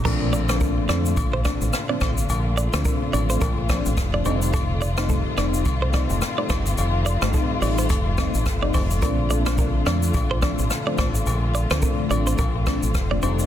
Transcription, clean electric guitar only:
X:1
M:4/4
L:1/16
Q:"Swing 16ths" 1/4=107
K:Bb
V:1 name="Clean electric guitar"
B z d c B z d z2 c d z2 d c z | z2 d c B z d c B2 z3 d c z | A z d c A z d z2 c d z2 d c z | z2 d c A z d c A2 z3 d c z |
B z d c B z d z2 c d z2 d c z | z2 d c B z d c B2 z3 d c z |]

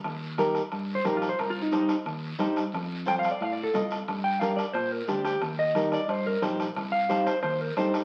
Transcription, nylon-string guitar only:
X:1
M:4/4
L:1/8
Q:1/4=178
K:Eblyd
V:1 name="Nylon-string guitar"
z2 [EGB] z3 [EGB] z | z2 [EGc] z3 [EGc] z | z2 [FAc] z3 [FAe] z | z2 [DGB] z3 [DGc] z |
z2 [EGB] z3 [EGc] z | z2 [EGc] z3 [EGA] z |]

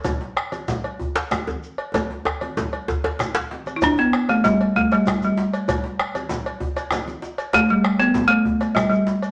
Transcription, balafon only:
X:1
M:12/8
L:1/16
Q:3/8=129
K:G
V:1 name="Balafon"
z24 | z16 z6 z3/2 E/2 | D2 B,4 A,2 G,4 A,2 G,4 G,4- G,/2 z3/2 | z24 |
A,2 G,4 B,4 A,6 G,2 G,4- G,/2 z3/2 |]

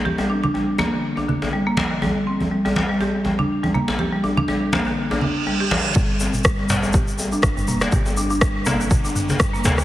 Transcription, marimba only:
X:1
M:4/4
L:1/16
Q:"Swing 16ths" 1/4=122
K:Gm
V:1 name="Marimba" clef=bass
G G, D D G, z B, D, z D D, z G, B, z D, | G, z C z G, G, z G, G z G, D z G, B, z | G G, D D G, z B, D, z D D z G, G z D, | G, z C z G, G, z G, G z G, D z G, B, z |
G G, D D G, z B, D, z D D, z G, B, z D, |]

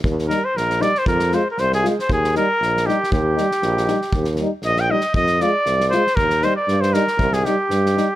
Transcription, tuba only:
X:1
M:2/4
L:1/8
Q:"Swing 16ths" 1/4=117
K:Eb
V:1 name="Tuba" clef=bass
E,,2 B,,,2 | F,,2 C,,2 | E,,2 B,,,2 | E,,2 B,,,2 |
E,,2 B,,,2 | F,,2 C,,2 | E,,2 G,,2 | C,,2 G,,2 |]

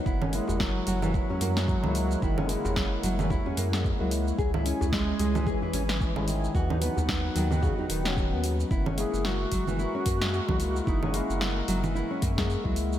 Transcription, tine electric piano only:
X:1
M:4/4
L:1/16
Q:"Swing 16ths" 1/4=111
K:F#mix
V:1 name="Tine electric piano"
z2 [G,A,E]8- [G,A,E] [G,A,G]2 [G,A,E]3- | [G,A,E]2 [G,A,E]8- [G,A,E] [G,A,G]2 [G,A,E]3 | z2 [G,CE]8- [G,CE] [G,CG]2 [G,CE]3 | z2 [F,B,D]8- [F,B,D] [F,B,C]4- [F,B,C] |
z2 [G,A,E]8- [G,A,E] [G,A,G]2 [G,A,E]3- | [G,A,E]2 [G,A,E]8- [G,A,E] [G,A,G]2 [G,A,E]3 |]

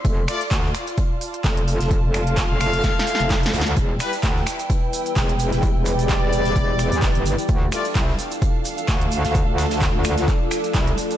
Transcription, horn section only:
X:1
M:4/4
L:1/8
Q:"Swing 16ths" 1/4=129
K:Ephr
V:1 name="Horn section"
z [A,Fd] z6 | z [A,Ff]6- [A,Ff] | z [G,EB] z6 | z [G,Ed]6- [G,Ed] |
z [A,Fd] z6 | z8 |]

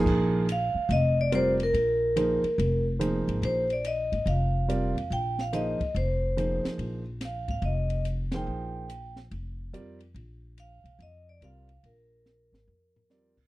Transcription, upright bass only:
X:1
M:4/4
L:1/8
Q:"Swing" 1/4=143
K:Bbmix
V:1 name="Upright bass" clef=bass
B,,,3 z F,,,4 | B,,,3 z F,,,3 A,,, | B,,,3 A,,, F,,,3 F,, | B,,,3 z F,,,3 z |
B,,,3 A,,, F,,,4 | B,,,4 F,,,2 F,,2 | B,,,3 _C,, F,,2 =C,,2 | B,,,3 A,,, F,,3 _C,, |]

